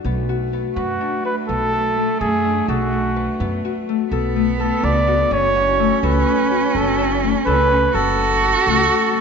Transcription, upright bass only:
0.05 B1
0.76 F#2
1.49 B1
2.21 F#2
2.68 B1
3.40 F#2
4.12 B1
4.83 C#2
5.31 F#1
6.03 C#2
6.75 F#1
7.47 C#2
7.95 F#1
8.67 C#2

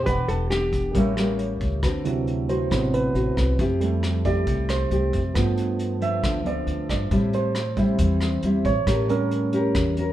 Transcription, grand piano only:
0.03 G4 B4
0.07 D5 F#5
0.92 G4 A#4
0.96 C#5 E5
2.04 C3 E3 F#3
2.49 C5
2.71 C3 E3 F#3 B3
2.94 B4
3.80 G3 A3
4.25 D5
4.70 C5
5.34 F3 A3 B3
6.02 E5
6.47 D5
6.90 D5
7.34 C5
7.76 G3 C4
8.65 C#5
9.08 G3 C#4 A#4

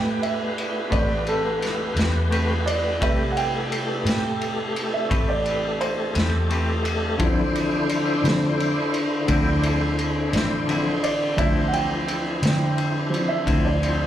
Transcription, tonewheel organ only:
Already playing: A3 B3 G4 B4
3.01 A3 G4 A4
7.21 D3 D4 E4 C5
11.36 D4 E4 C5

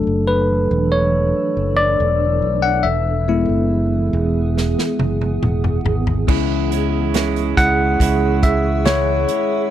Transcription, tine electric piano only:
Already playing: F#3 A3 D4 A4
0.28 B4
0.92 C#5
1.77 D5
2.62 F#5
2.83 E5
3.28 G#3 B3 E4
6.27 G#3 C#4 E4
7.57 G#3 C#4 E4 F#5
8.43 E5
8.86 C#5

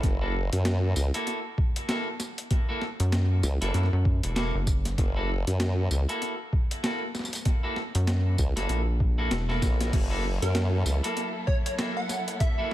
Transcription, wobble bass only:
0.03 F#1
0.52 F#2
0.96 C#2
3.43 C#2
3.62 F#1
4.98 F#1
5.47 F#2
5.91 C#2
8.38 C#2
8.57 F#1
9.62 A#1
9.93 F#1
10.42 F#2
10.86 C#2

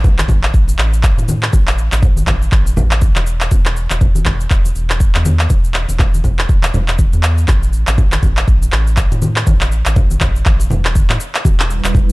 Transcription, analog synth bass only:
Already playing: A1
0.29 A1
0.54 A1
0.78 A1
1.18 A2
1.53 A1
1.92 A1
2.28 A1
2.52 A1
2.77 A1
3.16 E1
3.51 E1
3.90 E1
4.26 E1
4.51 E1
4.75 E1
5.15 E2
5.50 E1
5.89 E1
6.24 E1
6.49 E1
6.74 E1
7.13 E2
7.49 A1
7.87 A1
8.23 A1
8.48 A1
8.72 A1
9.12 A2
9.47 A1
9.86 A1
10.21 A1
10.46 A1
10.71 E1
11.10 A2
11.45 E1
11.84 E1

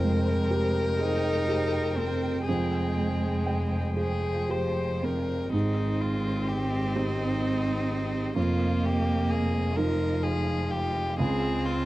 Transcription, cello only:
0.99 D#4
1.98 C4
2.47 G#3
3.94 F3
5.52 C4
8.37 A#3
9.77 F3
11.20 C4

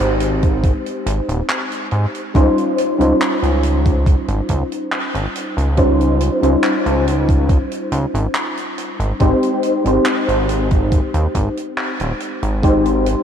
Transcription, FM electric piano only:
Already playing: G#3 C4 D#4 G4 C5
2.34 G3 C#4 D#4 F4 C5
2.98 G3 C#4 D#4 F4 C5
5.77 G3 C#4 D#4 F4 C5
6.41 G3 C#4 D#4 F4 C5
9.20 G#3 C4 D#4 G4 C5
9.84 G#3 C4 D#4 G4 C5
12.63 G#3 C4 D#4 G4 C5

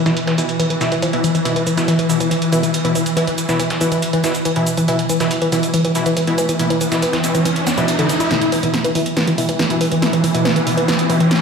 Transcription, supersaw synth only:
0.06 B2 E3 E4
0.38 B2 E3 E4
0.81 B2 E3 E4
1.13 B2 E3 E4
1.45 B2 E3 E4
1.77 B2 E3 E4
2.09 B2 E3 E4
2.52 B2 E3 E4
2.84 B2 E3 E4
3.17 B2 E3 E4
3.49 B2 E3 E4
3.81 B2 E3 E4
4.24 B2 E3 E4
4.56 B2 E3 E4
4.88 B2 E3 E4
5.20 B2 E3 E4
5.52 B2 E3 E4
5.95 B2 E3 E4
6.27 B2 E3 E4
6.60 B2 E3 E4
6.92 B2 E3 E4
7.24 B2 E3 E4
7.78 B2 E3 E4
7.99 B2 E3 E4
8.31 B2 E3 E4
8.63 B2 E3 E4
8.95 B2 E3 E4
9.38 B2 E3 E4
9.70 B2 E3 E4
10.02 B2 E3 E4
10.35 B2 E3 E4
10.67 B2 E3 E4
11.10 B2 E3 E4

